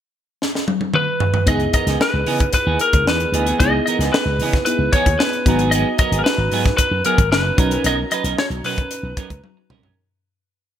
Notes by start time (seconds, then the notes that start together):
0.42 snare
0.55 snare
0.68 high tom
0.81 high tom
0.94 B4, mid tom
1.20 floor tom
1.34 floor tom
1.46 C#2 E3 B3 D#4 E4 G#4 D#5, kick, closed hi-hat
1.60 closed hi-hat
1.73 E3 B3 D#4 A#4 D#5, kick, closed hi-hat
1.87 C#2 E3 B3 D#4 G#4, snare, closed hi-hat
2.00 B4, muted clean electric guitar stroke, snare
2.13 C#2, muted clean electric guitar stroke
2.26 C#3 E3 B3 D#4 G#4, open hi-hat
2.40 muted clean electric guitar stroke, kick, closed hi-hat
2.53 B4, muted clean electric guitar stroke, kick, closed hi-hat
2.66 D#2 E3 B3 D#4 G#4
2.79 A#4, muted clean electric guitar stroke, closed hi-hat
2.93 C#2, muted clean electric guitar stroke, kick, closed hi-hat
3.06 E2 B4, muted clean electric guitar stroke, snare
3.20 muted clean electric guitar stroke, closed hi-hat
3.32 D2 E3 B3 D#4 G#4, closed hi-hat
3.46 E3 B3 D#4 G#4, closed hi-hat
3.59 C#2 E3 B3 D#4 E4 G#4 D#5, kick, closed hi-hat
3.86 E3 B3 D#4 A#4 D#5, closed hi-hat
3.99 C#2 E3 B3 D#4 G#4, snare, closed hi-hat
4.13 B4, snare
4.25 C#2, muted clean electric guitar stroke
4.39 C#3 E3 B3 D#4 G#4, open hi-hat
4.53 muted clean electric guitar stroke, kick, snare, closed hi-hat
4.65 B3 D#4 E4 G#4 B4, muted clean electric guitar stroke, closed hi-hat
4.78 C#2, muted clean electric guitar stroke
4.93 E3 B3 D#4 G#4 C#5, kick, closed hi-hat
5.06 D#2, muted clean electric guitar stroke, kick, closed hi-hat
5.19 B4, muted clean electric guitar stroke, snare
5.33 muted clean electric guitar stroke, closed hi-hat
5.46 G#1 F#3 B3 D#4 F#4 G#4 A#5, kick, closed hi-hat
5.59 B3 D#4 G#4, closed hi-hat
5.63 F#3
5.71 F#3 B3 D#4 G#4 D#5, closed hi-hat
5.98 F#3 B3 D#4 A#4 D#5, kick, closed hi-hat
6.11 G#1 F#3 B3 D#4 G#4, closed hi-hat
6.19 A#4
6.24 B4, muted clean electric guitar stroke, snare
6.38 G#1, muted clean electric guitar stroke
6.52 G#2 F#3 B3 D#4 G#4, open hi-hat
6.65 muted clean electric guitar stroke, kick, snare, closed hi-hat
6.77 B4, muted clean electric guitar stroke, kick, closed hi-hat
6.91 F#2, muted clean electric guitar stroke
7.05 F#3 B3 D#4 G#4 A#4, closed hi-hat
7.18 G#1, muted clean electric guitar stroke, kick, closed hi-hat
7.31 F#1 B4, muted clean electric guitar stroke, snare
7.45 muted clean electric guitar stroke
7.57 B1 F#3 C#4 D#4 F#4 A#4 A#5, kick, closed hi-hat
7.71 F#3 C#4 D#4 A#4, closed hi-hat
7.84 B1 F#3 C#4 D#4 A#4 D#5, closed hi-hat
8.11 F#3 C#4 D#4 B4 D#5, closed hi-hat
8.24 B1 F#3 C#4 D#4 A#4, closed hi-hat
8.38 C#5, muted clean electric guitar stroke, snare
8.50 B1, muted clean electric guitar stroke, closed hi-hat
8.64 B2 F#3 C#4 D#4 A#4 B4, open hi-hat
8.78 muted clean electric guitar stroke, kick, closed hi-hat
8.91 muted clean electric guitar stroke, closed hi-hat
9.03 B1, muted clean electric guitar stroke
9.17 F#3 C#4 D#4 A#4, kick, closed hi-hat
9.30 C#2, muted clean electric guitar stroke, kick, closed hi-hat
9.44 muted clean electric guitar stroke, high tom
9.57 muted clean electric guitar stroke
9.70 C2 F#3 C#4 D#4 A#4, mid tom
9.82 F#3 C#4 D#4 A#4, floor tom